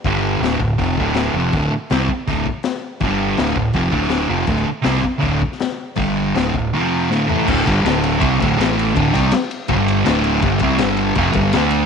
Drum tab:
CC |----------------|----------------|----------------|----------------|
RD |----------------|----------------|----------------|----------------|
HH |o---o---o---o---|o---o---o---o---|o---o---o---o---|o---o---o---o---|
SD |----o-------o---|----o-------o---|----o------oo---|-o--o------oo---|
FT |----------------|----------------|----------------|----------------|
BD |o-----o-o-o-----|o-----o-o-o-----|o-----o-o-o-----|o-----o-o-o-----|

CC |----------------|x---------------|----------------|----------------|
RD |----------------|--x-x-x-x-x-x-x-|x-x-x-x-x-x-x-x-|x-x-x-x-x-x-x-x-|
HH |o---o-----------|----------------|----------------|----------------|
SD |----o-------o---|--o-o-------o---|--o-o-------o---|----o-------o---|
FT |--------------o-|----------------|----------------|----------------|
BD |o-----o---------|o-o-----o-o-----|o-o-----o-------|o-o-----o-o-----|